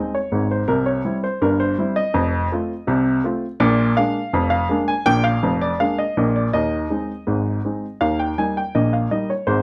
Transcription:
upright piano
Already playing: G#3 C4 D#4 D#5
0.15 C#5
0.32 G#1 G#2
0.51 C5
0.68 C2 C3 A#4
0.86 C#5
1.05 G3 C4 E4
1.24 C5
1.42 G1 G2 A#4
1.60 C5
1.78 G3 C4 E4
1.96 D#5
2.14 F1 F2
2.52 A3 C4 F4
2.87 C2 C3
3.24 A3 C4 F4
3.60 A#1 A#2 D5
3.97 G#3 A#3 D4 F5
4.33 F1 F2
4.50 F5
4.69 G#3 A#3 D4
4.88 G#5
5.06 A#1 A#2 G5
5.24 F5
5.43 F1 F2
5.61 D5
5.80 G#3 A#3 D4 F5
5.98 D#5
6.17 A#1 A#2
6.36 D5
6.53 D#2 D#3 D#5
6.90 G#3 C4 D#4
7.27 G#1 G#2
7.65 G#3 C4 D#4
8.01 D#2 D#3 F5
8.19 G5
8.38 G3 A#3 D#4 G#5
8.57 G5
8.75 A#1 A#2 D#5
8.93 F5
9.11 G3 A#3 D#4 D#5
9.30 C#5
9.47 G#1 G#2 C5

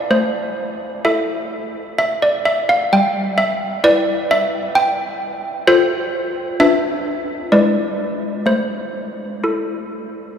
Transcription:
handbells
Already playing: D5
0.10 A3 C5
1.05 E4 A4 E5
1.98 E5
2.22 D5
2.45 E5
2.69 F5
2.93 G3 G5
3.38 E5
3.84 E4 B4 D5
4.31 E5
4.75 G5
5.67 F4 A4 C5
6.60 D4 F4 B4 E5
7.52 G#3 E4 B4 D5
8.46 A3 C5
9.44 E4 A4

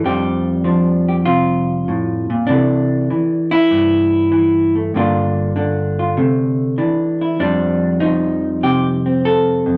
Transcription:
hollow-body jazz guitar
0.04 F2 F3 G3 D4 G4
0.64 F3 D4
1.08 G4
1.25 C3 F4
1.88 A2
2.30 A#2
2.47 C3 E3 A3 D4
3.10 E3
3.51 E4
3.71 G2
4.32 E3
4.75 A3
4.94 G2 D3 A#3 D4 F4
5.56 D3 D4
5.99 F4
6.17 C3 A3
6.78 E3 D4
7.21 E4
7.39 F2 F3 G3 D4
8.00 F3 D#4
8.63 C3 G4
9.06 C4
9.25 A4
9.66 F2

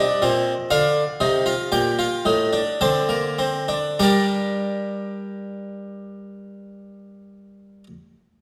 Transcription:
harpsichord
Already playing: D#5
0.00 D4
0.22 A#2 C4
0.71 D3 D4 F5
1.20 C3 D#4
1.46 F4
1.72 A#2 G4 G5
1.99 F4
2.25 A2 D#4
2.53 D4
2.81 D3 C4 A5
3.09 A#3
3.39 C4
3.68 D4
3.99 G3 D4 G4 A#4 D5

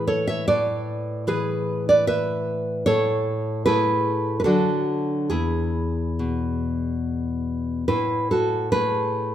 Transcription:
nylon-string guitar
Already playing: A2 E3
0.07 A4 C#5
0.27 C#5 E5
0.48 A2 B4 D5
1.27 E3 G#4 B4
1.89 B4 D5
2.07 B4 E5
2.86 A2 A4 C#5
3.66 A3 E4 G#4 B4
4.40 B4
4.44 D3 F#3 D4 F#4 A4
5.30 E2 E4 G#4
6.19 B2
7.88 A2 E4 B4
8.31 F#4 A4
8.72 A3 G#4 B4

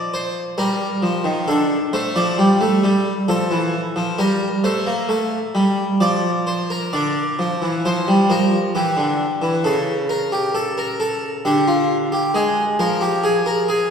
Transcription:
harpsichord
Already playing: F3
0.14 C5
0.58 G3 A#4
1.02 F3
1.24 D#3
1.48 D3 A4
1.93 A3 C5
2.16 F3 D5
2.38 G3
2.61 A3
2.84 G3
3.28 F3 A4
3.51 E3
3.96 F3
4.18 G3 A#4
4.64 A3 C5
4.86 A#3
5.09 A3
5.55 G3
6.00 F3 D5
6.47 C5
6.70 A#4
6.93 D3 D5
7.39 F3
7.62 E3
7.85 F3 C5
8.08 G3
8.30 F3 A#4
8.75 E3 G4
8.97 D3
9.42 E3
9.64 C#3 A4
10.09 A#4
10.32 G4
10.55 A4
10.78 A#4
11.00 A4
11.45 D3 G4
11.67 F4
12.12 G4
12.34 G#3 G#4
12.79 F3 A#4
13.01 G4
13.23 G#4
13.46 A#4
13.68 G#4

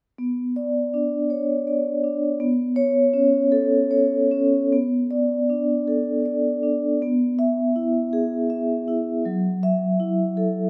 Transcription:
vibraphone
0.18 B3
0.56 D5
0.94 D4
1.30 C#5
1.67 D5
2.04 D4
2.40 B3
2.76 C#5
3.14 C#4
3.52 A4
3.91 C#5
4.32 C#4
4.72 B3
5.11 D5
5.50 D4
5.88 A4
6.26 D5
6.63 D4
7.02 B3
7.39 E5
7.76 E4
8.13 G#4
8.50 E5
8.88 E4
9.25 F#3
9.63 E5
10.00 E4
10.37 A4

